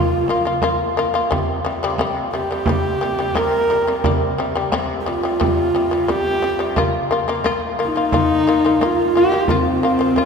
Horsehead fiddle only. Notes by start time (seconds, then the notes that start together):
Already playing: F4
2.33 G4
3.37 A#4
5.01 G4
5.08 F4
6.11 G4
7.84 D#4
8.85 F4
9.17 G4
9.50 C4
10.22 C#4